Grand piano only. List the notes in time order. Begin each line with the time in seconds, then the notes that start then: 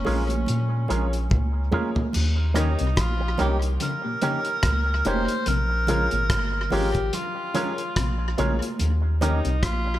0.05 F4 G#4 A#4 C#5
0.89 F4 G#4 A#4 C#5
1.72 F4 G#4 A#4 C#5
1.96 A#4 C#5
2.56 D#4 G4 A#4 C#5
3.39 D#4 G4 A#4 C#5
4.22 D#4 G4 A#4 C#5
5.05 D#4 G4 A#4 C#5
5.88 F4 G#4 A#4 C#5
6.71 F4 G#4 A#4 C#5
7.54 F4 G#4 A#4 C#5
8.38 F4 G#4 A#4 C#5
9.21 D#4 G4 A#4 C#5